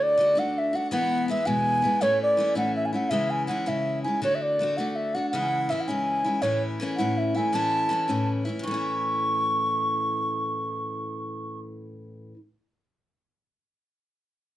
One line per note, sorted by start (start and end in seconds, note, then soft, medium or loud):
0.00 0.16 D3 medium
0.00 0.18 A3 medium
0.00 0.18 D4 medium
0.00 0.18 F#4 medium
0.00 0.40 D5 loud
0.18 0.35 D3 medium
0.18 0.36 A3 medium
0.18 0.35 D4 medium
0.18 0.34 F#4 medium
0.35 0.74 D3 soft
0.35 0.74 A3 medium
0.35 0.73 D4 medium
0.35 0.72 F#4 medium
0.35 0.60 F#5 loud
0.58 0.77 E5 medium
0.73 0.92 A3 soft
0.73 0.92 D4 soft
0.73 0.91 F#4 medium
0.73 0.91 F#5 loud
0.91 1.28 E2 medium
0.91 1.28 B2 medium
0.91 1.28 E3 medium
0.91 1.28 G#3 medium
0.91 1.29 B3 medium
0.91 1.31 E4 medium
0.91 1.26 F#5 loud
1.28 1.46 E3 medium
1.28 1.46 G#3 medium
1.28 1.45 B3 medium
1.28 1.44 E4 medium
1.28 1.48 E5 loud
1.45 1.84 E2 medium
1.45 1.84 B2 medium
1.45 1.85 E3 medium
1.45 1.84 G#3 medium
1.45 1.82 B3 medium
1.45 1.82 E4 medium
1.45 2.03 G#5 loud
1.82 2.00 E3 soft
1.82 2.01 G#3 soft
1.82 2.01 B3 medium
1.82 2.00 E4 medium
2.01 2.38 A2 medium
2.01 2.36 E3 medium
2.01 2.37 A3 medium
2.01 2.39 C#4 medium
2.01 2.39 E4 medium
2.01 2.21 C#5 loud
2.23 2.55 D5 loud
2.37 2.56 E3 medium
2.37 2.55 A3 medium
2.37 2.54 C#4 medium
2.37 2.54 E4 medium
2.55 2.94 A2 medium
2.55 2.94 E3 medium
2.55 2.94 A3 medium
2.55 2.93 C#4 medium
2.55 2.91 E4 medium
2.55 2.75 F#5 loud
2.76 2.87 E5 loud
2.85 2.94 G#5 medium
2.93 3.11 A3 soft
2.93 3.11 C#4 soft
2.93 3.11 E4 medium
2.93 3.11 F#5 loud
3.10 3.48 C#3 medium
3.10 3.46 E3 medium
3.10 3.47 G#3 medium
3.10 3.48 C#4 medium
3.10 3.49 E4 medium
3.10 3.32 E5 loud
3.30 3.47 G#5 loud
3.47 3.66 E3 medium
3.47 3.66 G#3 medium
3.47 3.65 C#4 medium
3.47 3.65 E4 medium
3.47 3.70 F#5 medium
3.66 4.05 C#3 medium
3.66 4.05 E3 medium
3.66 4.04 G#3 medium
3.66 4.04 C#4 medium
3.66 4.03 E4 medium
3.66 4.02 E5 medium
4.03 4.23 C#4 soft
4.03 4.22 E4 medium
4.03 4.20 G#5 loud
4.08 4.22 G#3 soft
4.22 4.58 D3 medium
4.22 4.59 A3 medium
4.22 4.60 D4 medium
4.22 4.60 F#4 medium
4.22 4.37 C#5 loud
4.35 4.43 E5 medium
4.42 4.78 D5 loud
4.59 4.77 D3 medium
4.59 4.78 A3 medium
4.59 4.77 D4 medium
4.59 4.77 F#4 medium
4.77 5.16 D3 medium
4.77 5.16 A3 medium
4.77 5.15 D4 medium
4.77 5.13 F#4 medium
4.77 4.91 F#5 medium
4.91 4.97 F#5 medium
4.96 5.16 E5 medium
5.15 5.34 A3 soft
5.15 5.33 D4 soft
5.15 5.33 F#4 medium
5.15 5.30 F#5 loud
5.30 5.70 C#3 medium
5.30 5.68 E3 medium
5.30 5.69 G#3 medium
5.30 5.72 F#5 loud
5.35 5.71 C#4 medium
5.35 5.72 E4 medium
5.69 5.87 E3 medium
5.69 5.88 G#3 medium
5.69 5.88 C#4 medium
5.69 5.86 E4 medium
5.69 5.82 E5 medium
5.80 5.90 F#5 medium
5.88 6.27 C#3 medium
5.88 6.42 E3 medium
5.88 6.26 G#3 medium
5.88 6.26 C#4 medium
5.88 6.24 E4 medium
5.88 6.43 G#5 loud
6.24 6.43 G#3 soft
6.24 6.42 C#4 medium
6.24 6.43 E4 medium
6.42 6.80 A2 medium
6.42 6.79 E3 medium
6.42 6.80 A3 medium
6.42 6.82 C#4 medium
6.42 6.82 E4 medium
6.42 6.62 C#5 medium
6.80 6.98 E3 medium
6.80 6.98 A3 medium
6.80 6.98 C#4 medium
6.80 6.97 E4 medium
6.97 7.53 E3 medium
6.97 7.37 A3 medium
6.97 7.36 C#4 medium
6.97 7.34 E4 medium
6.97 7.19 F#5 loud
7.01 7.37 A2 medium
7.18 7.38 E5 medium
7.34 7.53 A3 soft
7.34 7.54 C#4 soft
7.34 7.53 E4 medium
7.34 7.56 G#5 loud
7.52 7.90 A2 medium
7.52 7.89 E3 medium
7.52 7.90 A3 medium
7.52 7.91 C#4 medium
7.52 7.92 E4 medium
7.52 8.29 A5 loud
7.89 8.08 E3 medium
7.89 8.08 A3 medium
7.89 8.08 C#4 medium
7.89 8.06 E4 medium
8.08 8.47 A2 soft
8.08 8.63 E3 medium
8.08 8.48 A3 medium
8.08 8.47 C#4 medium
8.08 8.44 E4 medium
8.45 8.65 A3 medium
8.45 8.64 C#4 soft
8.45 8.63 E4 medium
8.59 12.32 A2 medium
8.63 12.34 E3 medium
8.63 12.36 A3 medium
8.63 11.60 C#6 loud
8.71 12.38 C#4 medium
8.71 12.39 E4 medium